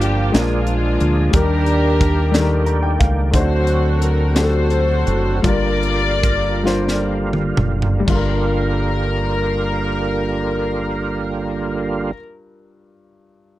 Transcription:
Already playing: fingered electric bass G1, grand piano G2 G3 D4 F4 A#4, tonewheel organ F3 A#3 D4 G4, string section D4 F4
0.01 string section G4, closed hi-hat
0.32 fingered electric bass A#1, grand piano A#2 G#3 D4 F4 A#4, tonewheel organ F3 A#3 D4 G#4, snare, closed hi-hat
0.38 string section G#3 D4 F4
0.67 closed hi-hat
1.00 fingered electric bass D2, closed hi-hat
1.31 fingered electric bass D#2, grand piano D#3 G3 D4 G4, tonewheel organ D#3 A#3, kick, closed hi-hat
1.35 tonewheel organ D4 G4, string section D4 G4 A#4, grand piano A#4
1.66 closed hi-hat
2.01 kick, closed hi-hat
2.31 grand piano D#3 G3 D4 A4, snare, closed hi-hat
2.41 grand piano A#4
2.66 grand piano A#5, closed hi-hat
2.83 grand piano G5
3.00 fingered electric bass C#2, grand piano F5, kick, closed hi-hat
3.31 fingered electric bass D2, grand piano D3 A3 D4 D#4, tonewheel organ D3 F#3 C4 F4, kick, closed hi-hat
3.35 string section F#4 A4 C5, grand piano C5
3.40 grand piano F#4, tonewheel organ F#4
3.67 closed hi-hat
4.02 string section A#4, closed hi-hat
4.33 grand piano A3 D4 F#4, string section F#4 A4 C5, snare, closed hi-hat
4.37 grand piano G4
4.44 grand piano A4
4.70 closed hi-hat
5.07 fingered electric bass F#1, closed hi-hat
5.42 fingered electric bass G1, grand piano G2 G3 D4 F4, tonewheel organ D3 G3 A#3 F4, string section D5, kick, closed hi-hat
5.46 string section F4 A#4, grand piano A#4
5.83 closed hi-hat
6.23 kick, closed hi-hat
6.63 grand piano G3 D4 F4 C5, snare
6.88 snare
7.33 mid tom
7.57 fingered electric bass F#1, mid tom
7.82 floor tom
8.00 grand piano G3
8.05 fingered electric bass G1, grand piano G2 D4, tonewheel organ D3 G3 A#3 F4, kick, crash
8.09 grand piano F4, string section A#4
8.15 grand piano A#4

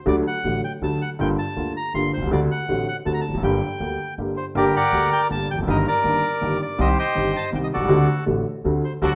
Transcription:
0.06 upright piano D2 D3 F#3 A3 F#4, upright bass D2, bandoneon D5
0.27 bandoneon F#5
0.44 upright bass A1, upright piano A1 A2 D3 F#3 A3 F#4
0.64 bandoneon G5
0.81 upright bass D2, upright piano D2 D3 F#3 A3 F#4, bandoneon A5
1.02 bandoneon F#5
1.19 upright piano G1 G2 D3 G3 A#3 F4, upright bass G1, bandoneon G5
1.39 bandoneon A5
1.56 upright piano D2 D3 G3 A#3 F4, upright bass D2
1.77 bandoneon A#5
1.94 upright bass G1, upright piano G1 G2 D3 G3 A#3 F4, bandoneon C6
2.14 upright bass B1, bandoneon C5
2.18 upright piano B1
2.22 upright piano C2, upright bass C2
2.26 upright bass C#2, upright piano C#2
2.31 upright piano D2 D3 A3 C4 F#4, upright bass D2, bandoneon D5
2.51 bandoneon F#5
2.69 upright bass A1, upright piano A1 A2 D3 A3 C4 F#4
2.88 bandoneon F#5
3.05 upright piano D2 D3 A3 C4 F#4, upright bass D2, bandoneon A5
3.14 bandoneon A#5
3.21 bandoneon A5
3.29 upright bass E1, upright piano E2
3.34 upright bass F1 F#1, upright piano F2 F#2
3.42 upright bass G1, upright piano G1 G2 D3 G3 A#3 G4, bandoneon G5
3.80 upright bass D2, upright piano D2 D3 G3 A#3 G4
4.18 upright bass G1, upright piano G1 G2 D3 G3 A#3 G4
4.37 bandoneon C5
4.55 upright bass G1, upright piano G1 G2 D3 G3 A#3 G4, bandoneon G4 A#4 D5
4.76 bandoneon A#4 D5 F#5
4.92 upright bass D2, upright piano D2 D3 G3 A#3 G4
5.13 bandoneon G5
5.29 upright piano G1 G2 D3 G3 A#3 G4, upright bass G1, bandoneon A5
5.51 upright bass E1, upright piano E2, bandoneon G5
5.58 upright bass F1, upright piano F2
5.62 upright bass F#1, upright piano F#2
5.67 upright piano G1 G2 D#3 A#3 D4 G4, upright bass G1, bandoneon A#4 D#5
5.88 bandoneon A#4 D5
6.04 upright piano G1 G2 D#3 A#3 D4 G4, upright bass G1
6.41 upright piano G1 G2 D#3 A#3 D4 G4, upright bass G1
6.62 bandoneon D5
6.78 upright piano C2 C3 D#3 G3 C4 G4, upright bass C2, bandoneon G4 C5 D#5
6.99 bandoneon C5 D#5 G5
7.15 upright piano G1 G2 D#3 G3 C4 G4, upright bass G1
7.36 bandoneon A5
7.52 upright piano C2 C3 D#3 G3 C4 G4, upright bass C2, bandoneon G5
7.64 bandoneon D#5
7.74 upright piano B1, upright bass B1, bandoneon F#4 A4 D5
7.80 upright piano C2, upright bass C2
7.85 upright piano C#2 D2 D3 A3, upright bass C#2
7.89 upright bass D2, upright piano C4 F#4
8.26 upright piano A1 A2 D3 A3 C4 F#4, upright bass A1
8.64 upright bass D2, upright piano D2 D3 A3 C4 F#4
8.85 bandoneon C5
9.02 upright piano D2 D3 F#3 A3 F#4, upright bass D2, string section A3 D4 F#4, bandoneon F#4 A4 D5

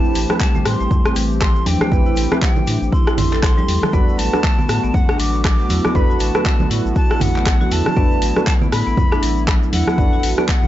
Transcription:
Already playing: analog synth pad E3 A3 C4 G4, synth stab C4 E4 G4 B4, flute A5
0.04 shaker
0.15 sub bass A1, marimba E3, open hi-hat, shaker
0.30 synth stab C4 E4 G4 B4, cross-stick, high conga, shaker
0.39 marimba G3, flute A5, kick, clap, shaker
0.55 marimba A3, low conga, shaker
0.65 sub bass A2, flute C6, cross-stick, open hi-hat, shaker
0.80 sub bass A1, marimba A3, shaker
0.91 kick, mid tom, low conga, shaker
1.05 marimba C4, cross-stick, shaker
1.16 sub bass A1, marimba E3, open hi-hat, shaker
1.31 shaker
1.41 marimba E3, flute C6, kick, cross-stick, clap, shaker
1.56 shaker
1.66 sub bass E2, marimba D4, flute G5, open hi-hat, high conga, shaker
1.81 marimba A3, cross-stick, high conga, shaker
1.92 sub bass A1, synth stab C4 E4 G4 B4, kick, mid tom, shaker
2.06 marimba E4, shaker
2.16 sub bass A1, open hi-hat, shaker
2.31 marimba A3, synth stab C4 E4 G4 B4, cross-stick, high conga, shaker
2.42 marimba E3, flute G5, kick, clap, shaker
2.56 high conga, low conga, shaker
2.67 sub bass A2, marimba D4, open hi-hat, shaker
2.82 sub bass A1, shaker
2.92 marimba E4, flute C6, kick, shaker
3.07 marimba E4, cross-stick, shaker
3.18 sub bass A1, marimba E4, flute C6, mid tom, open hi-hat, low conga, shaker
3.32 marimba A4, clap, shaker
3.43 flute C6, kick, cross-stick, clap, shaker
3.57 marimba G3, high conga, shaker
3.68 sub bass E2, open hi-hat, shaker
3.82 marimba A4, cross-stick, high conga, low conga, shaker
3.93 sub bass A1, analog synth pad D3 A3 B3 F#4, marimba B3, synth stab D4 F#4 A4 B4, flute B5, kick, mid tom, shaker
4.08 shaker
4.18 sub bass A1, marimba F#3, flute A5, open hi-hat, shaker
4.33 synth stab D4 F#4 A4 B4, cross-stick, high conga, shaker
4.44 marimba A3, kick, clap, shaker
4.58 marimba B3, low conga, shaker
4.69 sub bass A2, cross-stick, open hi-hat, shaker
4.84 sub bass A1, marimba B3, shaker
4.94 flute F#5, kick, mid tom, low conga, shaker
5.09 marimba D4, cross-stick, shaker
5.19 sub bass A1, marimba F#3, flute D6, open hi-hat, shaker
5.35 shaker
5.44 marimba F#3, flute D6, kick, cross-stick, clap, shaker
5.59 shaker
5.70 sub bass E2, marimba E4, open hi-hat, high conga, shaker
5.84 marimba B3, cross-stick, high conga, shaker
5.95 sub bass A1, synth stab D4 F#4 A4 B4, flute B5, kick, mid tom, shaker
6.10 marimba F#4, shaker
6.20 sub bass A1, flute A5, open hi-hat, shaker
6.35 marimba B3, synth stab D4 F#4 A4 B4, cross-stick, high conga, shaker
6.45 marimba F#3, kick, clap, shaker
6.60 high conga, low conga, shaker
6.70 sub bass A2, marimba E4, open hi-hat, shaker
6.85 sub bass A1, shaker
6.96 marimba F#4, flute A5, kick, shaker
7.11 marimba E4, cross-stick, shaker
7.20 sub bass A1, flute F#5, mid tom, open hi-hat, low conga, shaker
7.36 marimba B3, clap, shaker
7.46 kick, cross-stick, clap, shaker
7.61 marimba F#4, high conga, shaker
7.71 sub bass E2, marimba E4, flute A5, open hi-hat, shaker
7.86 cross-stick, high conga, low conga, shaker
7.96 sub bass A1, marimba B3, synth stab D4 F#4 A4 B4, analog synth pad E4, kick, mid tom, shaker
8.12 shaker
8.22 sub bass A1, marimba F#3, open hi-hat, shaker
8.36 synth stab D4 F#4 A4 B4, cross-stick, high conga, shaker
8.47 marimba A3, flute A5, kick, clap, shaker
8.61 marimba B3, low conga, shaker
8.72 sub bass A2, flute B5, cross-stick, open hi-hat, shaker
8.87 sub bass A1, marimba B3, shaker
8.97 kick, mid tom, low conga, shaker
9.12 marimba D4, cross-stick, shaker
9.22 sub bass A1, marimba F#3, open hi-hat, shaker
9.37 shaker
9.48 marimba F#3, flute B5, kick, cross-stick, clap, shaker
9.63 shaker
9.73 sub bass E2, marimba E4, flute F#5, open hi-hat, high conga, shaker
9.87 marimba B3, cross-stick, high conga, shaker
9.98 sub bass A1, synth stab D4 F#4 A4 B4, kick, mid tom, shaker
10.13 marimba F#4, shaker
10.23 sub bass A1, open hi-hat, shaker
10.38 marimba B3, synth stab D4 F#4 A4 B4, cross-stick, high conga, shaker
10.49 marimba F#3, flute F#5, kick, clap, shaker
10.63 high conga, low conga, shaker

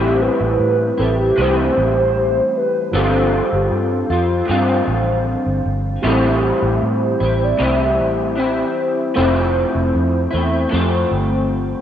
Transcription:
Already playing: fingered electric bass A1, clean electric guitar A2 E3 G3 C4 E4, upright piano G3 C4 E4 A4, soft synth lead G4
0.21 soft synth lead B4
0.40 fingered electric bass A1
0.60 fingered electric bass A2
0.98 fingered electric bass A1, clean electric guitar G3 C4 E4, soft synth lead A4
1.20 soft synth lead G4
1.36 fingered electric bass C2, clean electric guitar A2 E3 G3
1.40 clean electric guitar C4 E4, soft synth lead C5
1.77 fingered electric bass A1
2.57 soft synth lead B4
2.91 fingered electric bass G1, clean electric guitar G2 D3 F3 C4, upright piano F3 C4 D4
2.95 clean electric guitar F4, upright piano G4, soft synth lead A4
3.52 fingered electric bass G1, soft synth lead G4
3.71 fingered electric bass G2, soft synth lead A4
4.10 fingered electric bass F2, clean electric guitar F3 C4 F4
4.46 clean electric guitar G2 D3 F3, fingered electric bass G2
4.51 clean electric guitar C4 F4
4.88 fingered electric bass A1
5.46 fingered electric bass G1
5.66 fingered electric bass G1
6.02 fingered electric bass A1, clean electric guitar A2 E3 G3 C4 E4, upright piano G3 C4 E4
6.07 upright piano A4
6.62 fingered electric bass A1
6.82 fingered electric bass A2, soft synth lead C5
7.20 fingered electric bass A1, clean electric guitar G3 C4 E4
7.44 soft synth lead D5
7.58 fingered electric bass C2, clean electric guitar A2 E3 G3 C4 E4
7.63 soft synth lead E5
8.00 fingered electric bass A1
8.35 clean electric guitar E3 G3 C4 E4
8.80 soft synth lead C5
9.14 fingered electric bass F1, clean electric guitar F3 A3 C4 E4, upright piano C4 F4 E5
9.19 upright piano A4
9.75 fingered electric bass F1
9.95 fingered electric bass F2
10.31 fingered electric bass E2, clean electric guitar A3 C4 E4
10.69 fingered electric bass F2, clean electric guitar F3 A3
10.74 clean electric guitar C4
11.11 fingered electric bass G1

